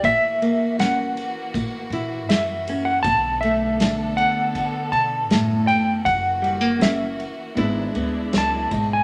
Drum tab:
RD |xxxxxxxx|xxxxxxxx|xxxxxxxx|
SD |--o---o-|--o---o-|--o---o-|
BD |o---o---|o---o---|o---o--o|